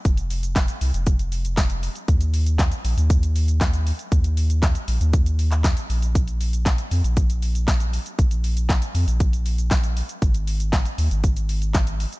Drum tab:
HH |xxoxxxoxxxoxxxox|xxoxxxoxxxoxxxox|xxoxxxoxxxoxxxox|xxoxxxoxxxoxxxox|
SH |xxxxxxxxxxxxxxxx|xxxxxxxxxxxxxxxx|xxxxxxxxxxxxxxxx|xxxxxxxxxxxxxxxx|
CP |----x-------x---|----x-------x---|----x------xx---|----x-------x---|
SD |----o-------o---|----o-------o---|----o-------o---|----o-------o---|
BD |o---o---o---o---|o---o---o---o---|o---o---o---o---|o---o---o---o---|

HH |xxoxxxoxxxoxxxox|xxoxxxoxxxoxxxox|
SH |xxxxxxxxxxxxxxxx|xxxxxxxxxxxxxxxx|
CP |----x-------x---|----x-------x---|
SD |----o-------o---|----o-------o---|
BD |o---o---o---o---|o---o---o---o---|